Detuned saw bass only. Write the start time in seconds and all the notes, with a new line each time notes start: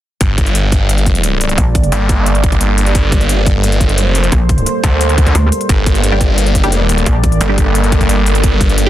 0.21 G1
1.92 G1
2.44 G1
2.95 G1
3.91 F#1
4.18 F1
4.84 D2
5.69 G1
6.67 F1
6.89 D#1
7.41 G1
7.92 G1
8.44 G1